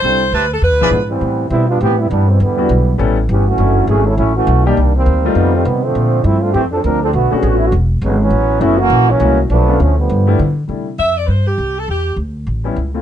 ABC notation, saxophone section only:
X:1
M:4/4
L:1/16
Q:"Swing" 1/4=203
K:Ephr
V:1 name="Saxophone section"
c4 B2 A2 B6 z2 | [K:Gmix] z16 | z16 | z16 |
z16 | z16 | z16 | z16 |
z16 | [K:C] z4 e2 d3/2 B/2 c2 G4 A2 | G4 z12 |]